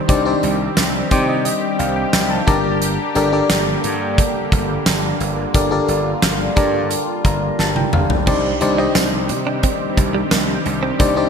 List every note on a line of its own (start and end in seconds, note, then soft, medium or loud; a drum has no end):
0.00 2.44 D#3 medium
0.00 2.44 G3 medium
0.00 2.44 C4 medium
0.00 5.16 G4 medium
0.08 0.33 C2 loud
0.08 0.22 D4 medium
0.08 0.22 D#4 medium
0.08 0.22 G4 medium
0.08 0.22 C5 medium
0.08 0.22 D5 loud
0.08 kick loud
0.08 closed hi-hat loud
0.25 0.91 D4 medium
0.25 0.91 D#4 medium
0.25 0.91 G4 medium
0.25 0.91 C5 medium
0.25 0.91 D5 loud
0.43 0.68 C2 loud
0.43 closed hi-hat medium
0.77 1.02 C2 loud
0.77 snare loud
0.77 closed hi-hat medium
0.77 tambourine medium
1.11 1.48 C3 loud
1.11 2.15 C4 medium
1.11 2.15 D#4 medium
1.11 2.15 G4 medium
1.11 2.16 C5 medium
1.11 2.16 D5 loud
1.11 1.27 G5 medium
1.11 kick medium
1.11 closed hi-hat medium
1.28 1.44 D#5 medium
1.45 1.77 D#5 medium
1.45 closed hi-hat loud
1.79 2.04 C2 loud
1.79 1.95 F5 medium
1.79 closed hi-hat medium
1.96 2.12 G5 medium
2.13 2.38 C2 loud
2.13 2.29 G5 medium
2.13 snare loud
2.13 closed hi-hat medium
2.13 tambourine medium
2.30 2.46 A5 medium
2.47 2.97 G1 loud
2.47 8.23 D3 medium
2.47 11.29 G3 medium
2.47 8.23 A#3 medium
2.47 3.02 D4 medium
2.47 3.02 G4 medium
2.47 3.02 A#4 medium
2.47 3.02 D5 loud
2.47 3.02 A5 medium
2.47 2.79 A#5 medium
2.47 kick loud
2.47 closed hi-hat medium
2.82 closed hi-hat medium
3.15 3.40 G1 loud
3.15 3.28 D4 loud
3.15 3.29 G4 medium
3.15 3.29 A4 medium
3.15 3.29 A#4 medium
3.15 3.29 D5 loud
3.15 closed hi-hat medium
3.32 4.37 D4 medium
3.32 4.37 G4 medium
3.32 4.37 A4 medium
3.32 4.37 A#4 medium
3.32 4.37 D5 loud
3.50 3.75 G1 loud
3.50 snare loud
3.50 closed hi-hat loud
3.50 tambourine medium
3.84 4.21 G2 loud
3.84 closed hi-hat medium
4.18 kick loud
4.18 closed hi-hat loud
4.52 4.77 G1 loud
4.52 kick loud
4.52 closed hi-hat medium
4.86 5.11 G1 loud
4.86 snare loud
4.86 closed hi-hat medium
4.86 tambourine medium
5.20 5.45 G1 loud
5.20 8.24 F4 loud
5.20 closed hi-hat medium
5.54 5.79 G1 loud
5.54 5.67 D4 medium
5.54 5.67 G4 medium
5.54 5.68 A4 medium
5.54 5.68 A#4 medium
5.54 5.68 D5 medium
5.54 kick loud
5.54 closed hi-hat loud
5.71 6.36 D4 medium
5.71 6.36 G4 medium
5.71 6.37 A4 medium
5.71 6.37 A#4 medium
5.71 6.37 D5 loud
5.88 6.13 G1 loud
5.88 closed hi-hat medium
6.22 6.47 G1 loud
6.22 snare loud
6.22 closed hi-hat medium
6.22 tambourine medium
6.56 6.94 G2 loud
6.56 7.61 D4 medium
6.56 7.61 G4 medium
6.56 7.61 A#4 medium
6.56 7.61 D5 medium
6.56 7.58 A5 medium
6.56 kick loud
6.56 closed hi-hat medium
6.91 closed hi-hat medium
7.25 7.49 G1 loud
7.25 7.57 A#5 medium
7.25 kick loud
7.25 closed hi-hat medium
7.59 7.83 G1 loud
7.59 7.75 A5 medium
7.59 snare medium
7.76 7.92 G5 medium
7.76 high tom medium
7.93 8.17 G1 loud
7.93 8.25 F5 medium
7.93 mid tom loud
8.10 floor tom loud
8.27 8.52 C2 loud
8.27 11.29 D#3 medium
8.27 11.29 C4 medium
8.27 8.38 C4 medium
8.27 8.53 D4 medium
8.27 8.53 D#4 medium
8.27 11.29 G4 medium
8.27 8.53 G4 medium
8.27 8.53 C5 medium
8.27 8.54 D5 loud
8.27 kick loud
8.27 crash medium
8.61 8.86 C2 loud
8.61 8.74 D4 loud
8.61 8.74 D#4 medium
8.61 8.74 G4 medium
8.61 8.75 C5 medium
8.61 8.75 D5 loud
8.61 muted clean electric guitar stroke soft
8.61 closed hi-hat medium
8.78 9.83 D#4 medium
8.78 8.89 D#4 medium
8.78 9.83 G4 medium
8.78 9.83 C5 medium
8.78 9.82 D5 medium
8.78 9.83 D#5 medium
8.95 9.31 C2 loud
8.95 9.06 C4 medium
8.95 snare loud
8.95 closed hi-hat loud
8.95 tambourine medium
9.29 9.66 C3 loud
9.29 muted clean electric guitar stroke soft
9.29 closed hi-hat medium
9.47 9.57 D4 medium
9.63 9.74 C4 medium
9.63 kick loud
9.63 closed hi-hat loud
9.97 10.22 C2 loud
9.97 muted clean electric guitar stroke soft
9.97 kick loud
9.97 closed hi-hat medium
10.15 10.25 G3 medium
10.31 10.56 C2 loud
10.31 10.42 A#3 medium
10.31 snare loud
10.31 closed hi-hat medium
10.31 tambourine medium
10.66 10.90 C2 loud
10.66 muted clean electric guitar stroke soft
10.66 closed hi-hat medium
10.83 10.93 C4 medium
10.99 11.24 C2 loud
10.99 11.11 A#3 medium
10.99 11.13 D4 medium
10.99 11.13 D#4 medium
10.99 11.13 G4 medium
10.99 11.13 C5 medium
10.99 11.13 D5 loud
10.99 kick loud
10.99 closed hi-hat loud
11.16 11.29 D4 medium
11.16 11.29 D#4 medium
11.16 11.29 G4 medium
11.16 11.29 C5 medium
11.16 11.29 D5 loud